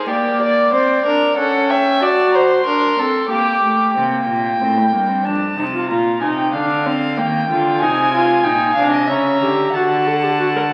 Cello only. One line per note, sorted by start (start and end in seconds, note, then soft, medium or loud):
3.95 4.26 C3 medium
4.28 4.60 A#2 medium
4.61 4.92 A2 medium
4.93 5.27 G2 medium
5.25 5.57 F2 medium
5.58 5.92 C3 medium
5.90 6.24 A#2 medium
6.22 6.55 C3 medium
6.53 7.19 D3 medium
7.18 7.49 D#3 medium
7.49 7.83 D3 medium
7.82 8.45 C3 medium
8.45 8.77 A#2 medium
8.78 9.11 C3 medium
9.10 9.42 C#3 medium
9.42 9.74 D3 medium
9.74 10.73 D3 medium